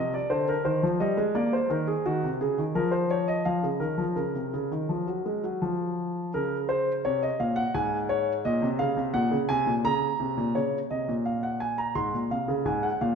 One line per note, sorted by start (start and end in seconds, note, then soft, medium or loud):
0.00 0.17 C3 medium
0.00 0.12 D#5 medium
0.14 0.30 D5 medium
0.30 0.52 D3 medium
0.30 0.47 C5 medium
0.49 0.65 A#4 medium
0.65 0.82 D#3 medium
0.65 0.86 C5 medium
0.83 1.00 F3 medium
1.00 1.17 G3 medium
1.00 1.22 D#5 medium
1.17 1.34 G#3 medium
1.35 1.56 A#3 medium
1.35 1.52 D5 medium
1.53 1.70 C5 medium
1.70 1.91 D#3 medium
1.70 1.87 A#4 medium
1.87 2.04 G#4 medium
2.06 2.22 D#3 medium
2.06 2.27 F#4 medium
2.23 2.40 C3 medium
2.41 2.57 C#3 medium
2.41 2.62 G#4 medium
2.58 2.75 D#3 medium
2.75 3.44 F3 medium
2.75 2.92 A#4 medium
2.91 3.09 C5 medium
3.11 3.28 C#5 medium
3.28 3.45 D#5 medium
3.45 3.63 F3 medium
3.45 3.68 F5 medium
3.63 3.81 C#3 medium
3.80 3.98 D#3 medium
3.80 4.03 A#4 medium
3.98 4.16 F3 medium
4.16 4.34 C#3 medium
4.16 5.93 A#4 medium
4.34 4.53 C3 medium
4.54 4.71 C#3 medium
4.71 4.89 D#3 medium
4.89 5.07 F3 medium
5.07 5.25 F#3 medium
5.25 5.43 G#3 medium
5.43 5.61 F#3 medium
5.62 6.32 F3 medium
6.34 7.03 C#3 medium
6.34 6.56 A#4 medium
6.69 6.91 C5 medium
7.05 7.27 C3 medium
7.05 7.22 C#5 medium
7.22 7.40 D#5 medium
7.40 7.62 A#2 medium
7.40 7.57 F5 medium
7.56 7.74 F#5 medium
7.74 8.44 G#2 medium
7.74 7.97 G#5 medium
8.09 8.32 C#5 medium
8.45 8.63 A#2 medium
8.45 8.67 D#5 medium
8.62 8.80 C3 medium
8.79 8.97 C#3 medium
8.79 9.01 F5 medium
8.97 9.15 C3 medium
9.14 9.32 A#2 medium
9.14 9.36 F#5 medium
9.31 9.49 C#3 medium
9.49 9.67 C3 medium
9.49 9.71 G#5 loud
9.66 9.85 A#2 medium
9.84 10.07 C#3 medium
9.84 10.54 A#5 loud
10.20 10.38 C3 medium
10.37 10.55 A#2 medium
10.55 10.77 C#3 medium
10.55 10.78 C#5 medium
10.91 11.08 C3 medium
10.91 11.13 D#5 medium
11.08 11.94 A#2 medium
11.26 11.43 F5 medium
11.43 11.61 F#5 medium
11.60 11.78 G#5 medium
11.78 11.96 A#5 medium
11.95 12.13 G#2 medium
11.95 12.18 C6 medium
12.14 12.31 A#2 medium
12.30 12.48 C3 medium
12.30 12.53 F5 medium
12.48 12.66 C#3 medium
12.65 12.88 G#2 medium
12.65 12.83 G#5 medium
12.83 13.01 F#5 medium
13.01 13.15 A#2 medium
13.01 13.15 F5 medium